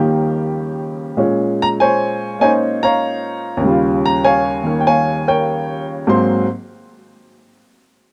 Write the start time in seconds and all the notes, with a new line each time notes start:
Already playing: D#2 C#3 D#3 F3 G3 A#3
0.00 G4
1.17 A#2 G#3 C#4
1.62 A#5
1.80 C5 C#5 G#5
2.39 A#3 C#4 D#4 C#5 G#5
2.43 C5
2.83 C#5 F5 A#5
3.57 D#2 C#3
3.65 G3 F4
4.06 A#5
4.24 C#5 F5 G#5
4.63 D#3 A#3 A#4
4.81 G5
4.87 C#5 F5 G#5
5.28 A#4 C#5 G5
6.07 G#2 F#3 A#3 C4 C6